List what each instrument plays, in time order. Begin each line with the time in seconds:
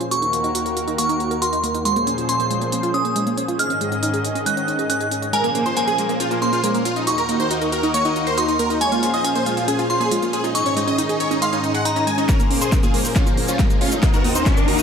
0.01 synth pluck F4, closed hi-hat
0.11 analog synth pad D#2 D#3 A#3 F#4 A#4, synth pluck F#4, synth bell C#6, closed hi-hat
0.22 synth pluck D#4, closed hi-hat
0.33 synth pluck A#3, closed hi-hat
0.44 synth pluck D#4, closed hi-hat
0.55 synth pluck F#4, closed hi-hat
0.66 synth pluck A#4, closed hi-hat
0.77 synth pluck F#4, closed hi-hat
0.88 synth pluck D#4, closed hi-hat
0.98 synth pluck A#3, synth bell C#6, closed hi-hat
1.09 synth pluck D#4, closed hi-hat
1.20 synth pluck F#4, closed hi-hat
1.31 synth pluck A#4, closed hi-hat
1.42 synth pluck F#4, synth bell C6, closed hi-hat
1.53 synth pluck D#4, closed hi-hat
1.64 synth pluck A#3, closed hi-hat
1.74 synth pluck D#4, closed hi-hat
1.85 analog synth pad A#2 F3 C#4 G#4 C5, synth pluck G#3, synth bell C6, closed hi-hat
1.96 synth pluck A#3, closed hi-hat
2.07 synth pluck C#4, closed hi-hat
2.18 synth pluck F4, closed hi-hat
2.29 synth pluck C#4, synth bell C6, closed hi-hat
2.40 synth pluck A#3, closed hi-hat
2.51 synth pluck G#3, closed hi-hat
2.61 synth pluck A#3, closed hi-hat
2.72 synth pluck C#4, closed hi-hat
2.83 synth pluck F4, closed hi-hat
2.94 synth pluck C#4, synth bell D#6, closed hi-hat
3.05 synth pluck A#3, closed hi-hat
3.16 synth pluck G#3, closed hi-hat
3.27 synth pluck A#3, closed hi-hat
3.38 synth pluck C#4, closed hi-hat
3.48 synth pluck F4, closed hi-hat
3.59 analog synth pad G#2 D#3 D#5, synth pluck D#4, synth bell F6, closed hi-hat
3.70 synth pluck C#4, closed hi-hat
3.81 synth pluck G#3, closed hi-hat
3.92 synth pluck C#4, closed hi-hat
4.03 synth pluck D#4, closed hi-hat
4.14 synth pluck G#4, closed hi-hat
4.25 synth pluck D#4, closed hi-hat
4.35 synth pluck C#4, closed hi-hat
4.46 synth pluck G#3, synth bell F#6, closed hi-hat
4.57 synth pluck C#4, closed hi-hat
4.68 synth pluck D#4, closed hi-hat
4.79 synth pluck G#4, closed hi-hat
4.90 synth pluck C#4, synth bell F#6, closed hi-hat
5.00 synth pluck G#4, closed hi-hat
5.11 synth pluck C#4, closed hi-hat
5.22 synth pluck C#5, closed hi-hat
5.33 analog synth pad A#2 F3 G#4 C5, synth pluck G#3, supersaw synth A#4, synth bell G#5, closed hi-hat
5.44 synth pluck A#3, supersaw synth A#3, closed hi-hat
5.55 supersaw synth A#3, synth pluck C#4, closed hi-hat
5.66 synth pluck F4, supersaw synth C5, closed hi-hat
5.77 supersaw synth A#3, synth pluck C#4, synth bell G#5, closed hi-hat
5.87 synth pluck A#3, supersaw synth G#4, closed hi-hat
5.98 synth pluck G#3, supersaw synth A#3, closed hi-hat
6.09 synth pluck A#3, supersaw synth A#3, closed hi-hat
6.20 synth pluck C#4, supersaw synth F4, closed hi-hat
6.31 supersaw synth A#3, synth pluck F4, closed hi-hat
6.42 supersaw synth A#3, synth pluck C#4, synth bell C6, closed hi-hat
6.53 synth pluck A#3, supersaw synth F4, closed hi-hat
6.64 synth pluck G#3, supersaw synth A#3, closed hi-hat
6.74 synth pluck A#3, supersaw synth A#3, closed hi-hat
6.85 synth pluck C#4, supersaw synth F4, closed hi-hat
6.96 supersaw synth D#4, synth pluck F4, closed hi-hat
7.07 analog synth pad D#2 D#3 A#3 F#4 A#4, supersaw synth D#4, synth pluck F#4, synth bell C#6, closed hi-hat
7.18 synth pluck D#4, supersaw synth A#4, closed hi-hat
7.29 synth pluck A#3, supersaw synth D#4, closed hi-hat
7.40 synth pluck D#4, supersaw synth C5, closed hi-hat
7.51 supersaw synth D#4, synth pluck F#4, closed hi-hat
7.61 supersaw synth D#4, synth pluck A#4, closed hi-hat
7.72 synth pluck F#4, supersaw synth A#4, closed hi-hat
7.83 synth pluck D#4, supersaw synth D#4, closed hi-hat
7.94 synth pluck A#3, supersaw synth C#5, synth bell C#6, closed hi-hat
8.05 synth pluck D#4, supersaw synth D#4, closed hi-hat
8.16 supersaw synth D#4, synth pluck F#4, closed hi-hat
8.27 synth pluck A#4, supersaw synth C5, closed hi-hat
8.38 supersaw synth D#4, synth pluck F#4, synth bell C6, closed hi-hat
8.48 synth pluck D#4, supersaw synth D#4, closed hi-hat
8.59 synth pluck A#3, supersaw synth A#4, closed hi-hat
8.70 synth pluck D#4, supersaw synth D#4, closed hi-hat
8.81 analog synth pad A#2 F3 C#4 G#4 C5, synth pluck G#3, supersaw synth C#5, synth bell G#5, closed hi-hat
8.92 synth pluck A#3, supersaw synth F4, closed hi-hat
9.03 synth pluck C#4, supersaw synth F4, closed hi-hat
9.14 synth pluck F4, supersaw synth D#5, closed hi-hat
9.24 synth pluck C#4, supersaw synth F4, synth bell G#5, closed hi-hat
9.35 synth pluck A#3, supersaw synth C5, closed hi-hat
9.46 synth pluck G#3, supersaw synth F4, closed hi-hat
9.57 synth pluck A#3, supersaw synth F4, closed hi-hat
9.68 synth pluck C#4, supersaw synth G#4, closed hi-hat
9.79 synth pluck F4, supersaw synth F4, closed hi-hat
9.90 synth pluck C#4, supersaw synth F4, synth bell C6, closed hi-hat
10.00 synth pluck A#3, supersaw synth G#4, closed hi-hat
10.11 synth pluck G#3, supersaw synth F4, closed hi-hat
10.22 synth pluck A#3, supersaw synth F4, closed hi-hat
10.33 synth pluck C#4, supersaw synth G#4, closed hi-hat
10.44 supersaw synth D#4, synth pluck F4, closed hi-hat
10.55 analog synth pad G#2 D#3 D#5, synth pluck D#4, supersaw synth D#4, synth bell C#6, closed hi-hat
10.66 synth pluck C#4, supersaw synth C#5, closed hi-hat
10.77 synth pluck G#3, supersaw synth D#4, closed hi-hat
10.87 synth pluck C#4, supersaw synth D#5, closed hi-hat
10.98 synth pluck D#4, supersaw synth D#4, closed hi-hat
11.09 supersaw synth D#4, synth pluck G#4, closed hi-hat
11.20 synth pluck D#4, supersaw synth C#5, closed hi-hat
11.31 synth pluck C#4, supersaw synth D#4, closed hi-hat
11.42 synth pluck G#3, supersaw synth F5, synth bell C6, closed hi-hat
11.53 synth pluck C#4, supersaw synth D#4, closed hi-hat
11.63 synth pluck D#4, supersaw synth D#4, closed hi-hat
11.74 synth pluck G#4, supersaw synth F#5, closed hi-hat
11.85 synth pluck D#4, supersaw synth D#4, synth bell A#5, closed hi-hat
11.96 synth pluck C#4, supersaw synth D#4, closed hi-hat
12.07 synth pluck G#3, supersaw synth G#5, closed hi-hat
12.18 synth pluck C#4, supersaw synth D#4, closed hi-hat
12.29 analog synth pad A#2 F3 C#4 G#4 C5, supersaw synth C#4 A#4, kick, snare, closed hi-hat, riser, shaker
12.40 synth pluck A#3, supersaw synth A#3, closed hi-hat, shaker
12.50 supersaw synth A#3, synth pluck C#4, open hi-hat
12.61 synth pluck F4, supersaw synth G#4 C5, closed hi-hat, shaker
12.72 supersaw synth A#3, synth pluck C#4, kick, snare, closed hi-hat, shaker
12.83 synth pluck A#3, supersaw synth F4 G#4, closed hi-hat, shaker
12.94 synth pluck G#3, supersaw synth A#3, open hi-hat
13.05 supersaw synth A#3, synth pluck A#3, open hi-hat, shaker
13.16 synth pluck C#4, supersaw synth C#4 F4, kick, snare, closed hi-hat, shaker
13.27 supersaw synth A#3, synth pluck F4, closed hi-hat, shaker
13.37 supersaw synth A#3, synth pluck C#4, open hi-hat
13.48 synth pluck A#3, supersaw synth C#4 F4, closed hi-hat, shaker
13.59 synth pluck G#3, supersaw synth A#3, kick, snare, closed hi-hat, shaker
13.70 synth pluck A#3, supersaw synth A#3, closed hi-hat, shaker
13.81 supersaw synth C#4 F4, synth pluck C#4, open hi-hat
13.92 supersaw synth D#4, synth pluck F4, closed hi-hat, shaker
14.03 analog synth pad D#2 D#3 A#3 F#4 A#4, supersaw synth D#4, kick, snare, closed hi-hat, shaker
14.14 synth pluck D#4, supersaw synth F#4 A#4, closed hi-hat, shaker
14.24 synth pluck A#3, supersaw synth D#4, open hi-hat
14.35 synth pluck D#4, supersaw synth D#4 C5, closed hi-hat, shaker
14.46 supersaw synth D#4, kick, snare, closed hi-hat, shaker
14.57 supersaw synth D#4, synth pluck A#4, closed hi-hat, shaker
14.68 synth pluck F#4, supersaw synth F#4 A#4, open hi-hat
14.79 supersaw synth D#4, synth pluck D#4, closed hi-hat, shaker